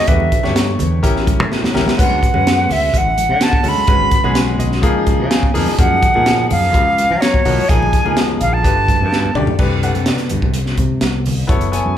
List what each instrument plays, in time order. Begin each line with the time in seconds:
0.07 fingered electric bass E2, grand piano A3 D4 G4 B4, flute E5, kick, closed hi-hat
0.20 high conga
0.32 kick, closed hi-hat
0.43 fingered electric bass G2, grand piano A3 D4 G4 C#5, snare, low conga
0.56 snare, closed hi-hat
0.79 fingered electric bass E2, closed hi-hat, high conga, low conga
1.03 fingered electric bass A1, grand piano C#4 E4 G4 A#4, kick, closed hi-hat
1.16 snare
1.27 kick, closed hi-hat, high conga
1.40 fingered electric bass A2
1.52 snare
1.63 snare, high conga
1.74 fingered electric bass A1, grand piano C#4 E4 G4 A#4, snare, low conga
1.86 snare, high conga
1.97 fingered electric bass D2, grand piano G#3 C#4 F#4 B4, flute F#5, kick, closed hi-hat, splash
2.10 high conga
2.23 kick, closed hi-hat
2.34 fingered electric bass F#2, grand piano G#3 C#4 F#4 B4, low conga
2.47 snare, closed hi-hat
2.69 fingered electric bass D2, flute E5, open hi-hat, low conga
2.94 fingered electric bass A1, flute F#5, kick, closed hi-hat
3.17 closed hi-hat, high conga
3.29 fingered electric bass D3
3.41 flute A5, snare, closed hi-hat
3.53 kick
3.63 fingered electric bass D2, grand piano G#3 C#4 F#4 A4, open hi-hat, low conga
3.69 flute B5
3.78 high conga
3.87 fingered electric bass G#1, grand piano G#3 C#4 F#4 B4, kick, closed hi-hat
4.02 high conga
4.11 kick, closed hi-hat
4.24 fingered electric bass B1, grand piano G#3 C#4 F#4 G#4, low conga
4.35 snare, closed hi-hat
4.58 fingered electric bass B1, grand piano D#5, closed hi-hat, low conga
4.72 snare
4.82 fingered electric bass C#2, grand piano F3 A#3 D#4 G#4 F5, kick, closed hi-hat
5.06 grand piano F5, kick, closed hi-hat, high conga
5.20 fingered electric bass C#3
5.30 grand piano G#5, snare, closed hi-hat
5.43 kick
5.54 fingered electric bass F2, grand piano F3 A#3 D#4 G#4, open hi-hat, low conga
5.66 snare, high conga
5.78 fingered electric bass F#2, grand piano F3 A#3 D#4 G#4, flute F#5, kick, closed hi-hat
5.91 high conga
6.02 kick, closed hi-hat
6.14 fingered electric bass A#2, grand piano F3 A#3 D#4 G#4, low conga
6.26 snare, closed hi-hat
6.50 fingered electric bass F#2, flute F5, open hi-hat, low conga
6.74 fingered electric bass C#2, kick, closed hi-hat
6.98 closed hi-hat, high conga
7.11 fingered electric bass F#3
7.21 flute C#5, snare, closed hi-hat
7.34 kick
7.45 fingered electric bass B1, grand piano F3 A#3 D#4 F#4, open hi-hat, low conga
7.58 high conga
7.69 fingered electric bass A#1, grand piano F3 A#3 D#4 G#4, flute G#5, kick, closed hi-hat
7.82 high conga
7.93 kick, closed hi-hat
8.04 fingered electric bass C#2, grand piano F3 A#3 D#4 G#4, low conga
8.17 snare, closed hi-hat
8.41 fingered electric bass A#1, flute F5, closed hi-hat, low conga
8.53 flute A5
8.63 fingered electric bass G1, grand piano A3 D4 G4 B4, kick, closed hi-hat
8.88 kick, closed hi-hat, high conga
9.01 fingered electric bass G2
9.13 snare
9.25 high conga
9.35 fingered electric bass D2, grand piano A3 D4 G4 D5, mid tom, low conga
9.47 floor tom, high conga
9.59 fingered electric bass C2, grand piano A3 D4 G4 B4, kick, crash
9.83 grand piano A3 D4 G4 B4 F#5, closed hi-hat
9.95 fingered electric bass C3, closed hi-hat, high conga
10.06 grand piano D5, snare, closed hi-hat
10.18 snare, closed hi-hat
10.30 fingered electric bass G2, closed hi-hat, low conga
10.42 fingered electric bass C2, kick, high conga
10.54 closed hi-hat
10.66 snare
10.77 fingered electric bass C3, kick, closed hi-hat, high conga
11.01 fingered electric bass C2, snare, closed hi-hat
11.26 open hi-hat, low conga
11.47 fingered electric bass F#1, grand piano B3 E4 A4 C#5, kick, closed hi-hat
11.61 closed hi-hat
11.72 grand piano B3 E4 A4 C#5 G#5, closed hi-hat
11.85 fingered electric bass F#2, high conga